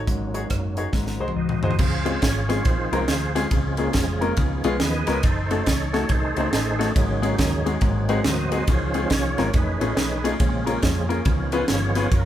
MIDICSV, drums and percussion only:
0, 0, Header, 1, 2, 480
1, 0, Start_track
1, 0, Key_signature, -5, "major"
1, 0, Tempo, 430416
1, 77, Time_signature, 4, 2, 24, 8
1, 13662, End_track
2, 0, Start_track
2, 0, Title_t, "Drums"
2, 83, Note_on_c, 9, 36, 94
2, 89, Note_on_c, 9, 42, 92
2, 195, Note_off_c, 9, 36, 0
2, 200, Note_off_c, 9, 42, 0
2, 384, Note_on_c, 9, 42, 64
2, 495, Note_off_c, 9, 42, 0
2, 557, Note_on_c, 9, 42, 74
2, 563, Note_on_c, 9, 36, 73
2, 566, Note_on_c, 9, 37, 92
2, 669, Note_off_c, 9, 42, 0
2, 675, Note_off_c, 9, 36, 0
2, 678, Note_off_c, 9, 37, 0
2, 857, Note_on_c, 9, 42, 51
2, 968, Note_off_c, 9, 42, 0
2, 1034, Note_on_c, 9, 38, 47
2, 1038, Note_on_c, 9, 36, 88
2, 1145, Note_off_c, 9, 38, 0
2, 1150, Note_off_c, 9, 36, 0
2, 1186, Note_on_c, 9, 38, 42
2, 1298, Note_off_c, 9, 38, 0
2, 1426, Note_on_c, 9, 48, 53
2, 1538, Note_off_c, 9, 48, 0
2, 1661, Note_on_c, 9, 45, 71
2, 1773, Note_off_c, 9, 45, 0
2, 1814, Note_on_c, 9, 43, 84
2, 1903, Note_off_c, 9, 43, 0
2, 1903, Note_on_c, 9, 43, 78
2, 1991, Note_on_c, 9, 49, 108
2, 1998, Note_on_c, 9, 36, 118
2, 2014, Note_off_c, 9, 43, 0
2, 2102, Note_off_c, 9, 49, 0
2, 2109, Note_off_c, 9, 36, 0
2, 2296, Note_on_c, 9, 51, 57
2, 2407, Note_off_c, 9, 51, 0
2, 2474, Note_on_c, 9, 51, 76
2, 2483, Note_on_c, 9, 36, 95
2, 2483, Note_on_c, 9, 38, 117
2, 2586, Note_off_c, 9, 51, 0
2, 2594, Note_off_c, 9, 36, 0
2, 2595, Note_off_c, 9, 38, 0
2, 2783, Note_on_c, 9, 51, 61
2, 2787, Note_on_c, 9, 38, 32
2, 2894, Note_off_c, 9, 51, 0
2, 2898, Note_off_c, 9, 38, 0
2, 2953, Note_on_c, 9, 51, 69
2, 2961, Note_on_c, 9, 36, 113
2, 3065, Note_off_c, 9, 51, 0
2, 3072, Note_off_c, 9, 36, 0
2, 3263, Note_on_c, 9, 51, 67
2, 3375, Note_off_c, 9, 51, 0
2, 3435, Note_on_c, 9, 38, 102
2, 3437, Note_on_c, 9, 51, 80
2, 3546, Note_off_c, 9, 38, 0
2, 3548, Note_off_c, 9, 51, 0
2, 3744, Note_on_c, 9, 51, 74
2, 3747, Note_on_c, 9, 38, 33
2, 3855, Note_off_c, 9, 51, 0
2, 3858, Note_off_c, 9, 38, 0
2, 3913, Note_on_c, 9, 51, 89
2, 3918, Note_on_c, 9, 36, 112
2, 4025, Note_off_c, 9, 51, 0
2, 4029, Note_off_c, 9, 36, 0
2, 4206, Note_on_c, 9, 51, 59
2, 4318, Note_off_c, 9, 51, 0
2, 4385, Note_on_c, 9, 51, 80
2, 4394, Note_on_c, 9, 38, 127
2, 4401, Note_on_c, 9, 36, 87
2, 4497, Note_off_c, 9, 51, 0
2, 4506, Note_off_c, 9, 38, 0
2, 4513, Note_off_c, 9, 36, 0
2, 4701, Note_on_c, 9, 51, 54
2, 4812, Note_off_c, 9, 51, 0
2, 4869, Note_on_c, 9, 51, 78
2, 4879, Note_on_c, 9, 36, 104
2, 4980, Note_off_c, 9, 51, 0
2, 4991, Note_off_c, 9, 36, 0
2, 5173, Note_on_c, 9, 51, 67
2, 5284, Note_off_c, 9, 51, 0
2, 5352, Note_on_c, 9, 38, 105
2, 5354, Note_on_c, 9, 51, 75
2, 5463, Note_off_c, 9, 38, 0
2, 5465, Note_off_c, 9, 51, 0
2, 5651, Note_on_c, 9, 51, 75
2, 5654, Note_on_c, 9, 38, 34
2, 5762, Note_off_c, 9, 51, 0
2, 5765, Note_off_c, 9, 38, 0
2, 5832, Note_on_c, 9, 51, 94
2, 5841, Note_on_c, 9, 36, 125
2, 5943, Note_off_c, 9, 51, 0
2, 5952, Note_off_c, 9, 36, 0
2, 6141, Note_on_c, 9, 51, 62
2, 6252, Note_off_c, 9, 51, 0
2, 6316, Note_on_c, 9, 51, 76
2, 6324, Note_on_c, 9, 36, 96
2, 6325, Note_on_c, 9, 38, 125
2, 6427, Note_off_c, 9, 51, 0
2, 6436, Note_off_c, 9, 36, 0
2, 6437, Note_off_c, 9, 38, 0
2, 6622, Note_on_c, 9, 51, 48
2, 6626, Note_on_c, 9, 38, 29
2, 6733, Note_off_c, 9, 51, 0
2, 6737, Note_off_c, 9, 38, 0
2, 6791, Note_on_c, 9, 51, 73
2, 6799, Note_on_c, 9, 36, 105
2, 6902, Note_off_c, 9, 51, 0
2, 6911, Note_off_c, 9, 36, 0
2, 7097, Note_on_c, 9, 51, 56
2, 7209, Note_off_c, 9, 51, 0
2, 7281, Note_on_c, 9, 38, 112
2, 7283, Note_on_c, 9, 51, 81
2, 7393, Note_off_c, 9, 38, 0
2, 7395, Note_off_c, 9, 51, 0
2, 7591, Note_on_c, 9, 51, 74
2, 7594, Note_on_c, 9, 38, 35
2, 7702, Note_off_c, 9, 51, 0
2, 7705, Note_off_c, 9, 38, 0
2, 7761, Note_on_c, 9, 36, 122
2, 7762, Note_on_c, 9, 51, 102
2, 7872, Note_off_c, 9, 36, 0
2, 7873, Note_off_c, 9, 51, 0
2, 8064, Note_on_c, 9, 51, 68
2, 8175, Note_off_c, 9, 51, 0
2, 8234, Note_on_c, 9, 51, 80
2, 8242, Note_on_c, 9, 36, 90
2, 8244, Note_on_c, 9, 38, 117
2, 8346, Note_off_c, 9, 51, 0
2, 8354, Note_off_c, 9, 36, 0
2, 8355, Note_off_c, 9, 38, 0
2, 8546, Note_on_c, 9, 51, 60
2, 8658, Note_off_c, 9, 51, 0
2, 8708, Note_on_c, 9, 51, 67
2, 8718, Note_on_c, 9, 36, 113
2, 8820, Note_off_c, 9, 51, 0
2, 8829, Note_off_c, 9, 36, 0
2, 9018, Note_on_c, 9, 51, 55
2, 9130, Note_off_c, 9, 51, 0
2, 9194, Note_on_c, 9, 38, 115
2, 9197, Note_on_c, 9, 51, 68
2, 9306, Note_off_c, 9, 38, 0
2, 9308, Note_off_c, 9, 51, 0
2, 9497, Note_on_c, 9, 51, 71
2, 9609, Note_off_c, 9, 51, 0
2, 9673, Note_on_c, 9, 51, 103
2, 9678, Note_on_c, 9, 36, 127
2, 9785, Note_off_c, 9, 51, 0
2, 9789, Note_off_c, 9, 36, 0
2, 9970, Note_on_c, 9, 51, 62
2, 10082, Note_off_c, 9, 51, 0
2, 10147, Note_on_c, 9, 51, 68
2, 10156, Note_on_c, 9, 38, 116
2, 10159, Note_on_c, 9, 36, 84
2, 10259, Note_off_c, 9, 51, 0
2, 10268, Note_off_c, 9, 38, 0
2, 10270, Note_off_c, 9, 36, 0
2, 10460, Note_on_c, 9, 51, 53
2, 10464, Note_on_c, 9, 38, 28
2, 10571, Note_off_c, 9, 51, 0
2, 10576, Note_off_c, 9, 38, 0
2, 10633, Note_on_c, 9, 51, 74
2, 10640, Note_on_c, 9, 36, 118
2, 10745, Note_off_c, 9, 51, 0
2, 10752, Note_off_c, 9, 36, 0
2, 10941, Note_on_c, 9, 51, 61
2, 11052, Note_off_c, 9, 51, 0
2, 11119, Note_on_c, 9, 38, 103
2, 11121, Note_on_c, 9, 51, 80
2, 11230, Note_off_c, 9, 38, 0
2, 11232, Note_off_c, 9, 51, 0
2, 11430, Note_on_c, 9, 51, 80
2, 11541, Note_off_c, 9, 51, 0
2, 11595, Note_on_c, 9, 51, 93
2, 11599, Note_on_c, 9, 36, 127
2, 11706, Note_off_c, 9, 51, 0
2, 11710, Note_off_c, 9, 36, 0
2, 11899, Note_on_c, 9, 51, 68
2, 12011, Note_off_c, 9, 51, 0
2, 12071, Note_on_c, 9, 51, 74
2, 12079, Note_on_c, 9, 36, 93
2, 12080, Note_on_c, 9, 38, 127
2, 12182, Note_off_c, 9, 51, 0
2, 12190, Note_off_c, 9, 36, 0
2, 12192, Note_off_c, 9, 38, 0
2, 12381, Note_on_c, 9, 51, 56
2, 12493, Note_off_c, 9, 51, 0
2, 12547, Note_on_c, 9, 51, 70
2, 12555, Note_on_c, 9, 36, 125
2, 12659, Note_off_c, 9, 51, 0
2, 12666, Note_off_c, 9, 36, 0
2, 12847, Note_on_c, 9, 51, 66
2, 12959, Note_off_c, 9, 51, 0
2, 13026, Note_on_c, 9, 38, 109
2, 13028, Note_on_c, 9, 51, 84
2, 13137, Note_off_c, 9, 38, 0
2, 13139, Note_off_c, 9, 51, 0
2, 13329, Note_on_c, 9, 51, 72
2, 13332, Note_on_c, 9, 38, 32
2, 13441, Note_off_c, 9, 51, 0
2, 13444, Note_off_c, 9, 38, 0
2, 13512, Note_on_c, 9, 36, 127
2, 13512, Note_on_c, 9, 51, 90
2, 13623, Note_off_c, 9, 51, 0
2, 13624, Note_off_c, 9, 36, 0
2, 13662, End_track
0, 0, End_of_file